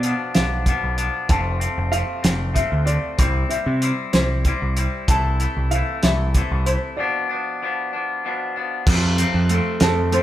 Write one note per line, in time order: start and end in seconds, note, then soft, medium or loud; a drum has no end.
0.00 0.13 B2 medium
0.00 0.65 B2 medium
0.00 0.31 D5 loud
0.00 closed hi-hat medium
0.04 0.35 F3 medium
0.04 0.34 B3 medium
0.04 0.33 D4 medium
0.34 0.73 B1 medium
0.34 0.66 F3 medium
0.34 0.67 B3 medium
0.34 0.68 D4 medium
0.34 1.02 F5 medium
0.34 snare loud
0.34 closed hi-hat medium
0.66 1.28 B2 medium
0.66 0.99 F3 medium
0.66 0.97 B3 medium
0.66 0.96 D4 medium
0.66 kick medium
0.66 closed hi-hat medium
0.84 1.08 B1 medium
0.97 1.29 F3 medium
0.97 1.28 B3 medium
0.97 1.27 D4 medium
0.97 closed hi-hat medium
1.29 1.66 F1 medium
1.29 1.92 F2 medium
1.29 1.91 C3 medium
1.29 1.62 F3 medium
1.29 1.60 A3 medium
1.29 1.60 C4 medium
1.29 1.94 A5 medium
1.29 kick loud
1.29 closed hi-hat medium
1.60 1.91 F3 medium
1.60 1.92 A3 medium
1.60 1.94 C4 medium
1.60 closed hi-hat medium
1.78 2.02 F1 medium
1.92 2.52 C3 medium
1.92 2.24 F3 medium
1.92 2.23 A3 medium
1.92 2.22 C4 medium
1.92 2.57 F5 loud
1.92 closed hi-hat medium
2.23 2.61 F1 medium
2.23 2.53 F3 medium
2.23 2.54 A3 medium
2.23 2.55 C4 medium
2.23 snare loud
2.23 closed hi-hat medium
2.54 3.16 C3 medium
2.54 2.87 F3 medium
2.54 2.86 A3 medium
2.54 2.85 C4 medium
2.54 2.88 E5 medium
2.54 kick medium
2.54 closed hi-hat medium
2.72 2.96 D2 medium
2.85 3.17 F3 medium
2.85 3.17 A3 medium
2.85 3.19 C4 medium
2.85 3.52 D5 medium
2.85 closed hi-hat medium
3.18 3.43 C2 medium
3.18 3.81 C3 medium
3.18 3.51 G3 medium
3.18 3.51 C4 medium
3.18 3.49 E4 medium
3.18 kick loud
3.18 closed hi-hat medium
3.49 3.81 G3 medium
3.49 3.82 C4 medium
3.49 3.84 E4 medium
3.49 4.15 E5 medium
3.49 closed hi-hat medium
3.66 3.91 C3 medium
3.81 4.43 C3 medium
3.81 4.14 G3 medium
3.81 4.13 C4 medium
3.81 4.12 E4 medium
3.81 closed hi-hat medium
4.13 4.51 C2 medium
4.13 4.44 G3 medium
4.13 4.45 C4 medium
4.13 4.46 E4 medium
4.13 4.80 C5 medium
4.13 snare loud
4.13 closed hi-hat medium
4.45 5.06 C3 medium
4.45 4.78 G3 medium
4.45 4.77 C4 medium
4.45 4.75 E4 medium
4.45 kick medium
4.45 closed hi-hat medium
4.62 4.86 C2 medium
4.77 5.08 G3 medium
4.77 5.07 C4 medium
4.77 5.06 E4 medium
4.77 closed hi-hat medium
5.08 5.45 C2 medium
5.08 5.71 C3 medium
5.08 5.42 E3 medium
5.08 5.41 A3 medium
5.08 5.39 E4 medium
5.08 5.74 A5 medium
5.08 kick loud
5.08 closed hi-hat medium
5.40 5.72 E3 medium
5.40 5.73 A3 medium
5.40 5.74 E4 medium
5.40 closed hi-hat medium
5.57 5.81 C2 medium
5.71 6.34 C3 medium
5.71 6.05 E3 medium
5.71 6.04 A3 medium
5.71 6.02 E4 medium
5.71 6.04 F5 medium
5.71 closed hi-hat medium
6.03 6.40 C2 medium
6.03 6.35 E3 medium
6.03 6.36 A3 medium
6.03 6.36 E4 medium
6.03 6.68 E5 medium
6.03 snare loud
6.03 closed hi-hat medium
6.34 6.96 C3 medium
6.34 6.68 E3 medium
6.34 6.67 A3 medium
6.34 6.65 E4 medium
6.34 kick medium
6.34 closed hi-hat medium
6.51 6.76 C2 medium
6.66 6.97 E3 medium
6.66 6.97 A3 medium
6.66 6.96 E4 medium
6.66 6.99 C5 medium
6.66 closed hi-hat medium
6.97 7.60 B2 medium
6.97 7.31 F3 medium
6.97 7.30 B3 medium
6.97 7.28 D4 medium
6.97 8.51 D5 medium
7.29 7.61 F3 medium
7.29 7.62 B3 medium
7.29 7.63 D4 medium
7.62 8.23 B2 medium
7.62 7.94 F3 medium
7.62 7.93 B3 medium
7.62 7.92 D4 medium
7.93 8.24 F3 medium
7.93 8.25 B3 medium
7.93 8.26 D4 medium
8.24 8.85 B2 medium
8.24 8.58 F3 medium
8.24 8.56 B3 medium
8.24 8.55 D4 medium
8.56 8.87 F3 medium
8.56 8.86 B3 medium
8.56 8.85 D4 medium
8.87 9.24 F2 loud
8.87 9.50 F2 medium
8.87 9.49 C3 medium
8.87 9.20 F3 medium
8.87 9.19 A3 medium
8.87 9.18 C4 medium
8.87 kick loud
8.87 crash loud
9.18 9.50 F3 medium
9.18 9.51 A3 medium
9.18 9.53 C4 medium
9.18 closed hi-hat medium
9.34 9.59 F2 medium
9.49 10.11 C3 medium
9.49 9.83 F3 medium
9.49 9.82 A3 medium
9.49 9.81 C4 medium
9.49 closed hi-hat medium
9.80 10.18 F2 medium
9.80 10.12 F3 medium
9.80 10.13 A3 medium
9.80 10.14 C4 medium
9.80 10.12 A4 medium
9.80 snare loud
9.80 closed hi-hat medium
10.12 10.23 C3 medium
10.12 10.23 F3 medium
10.12 10.23 A3 medium
10.12 10.23 C4 medium
10.12 10.23 C5 medium
10.12 closed hi-hat medium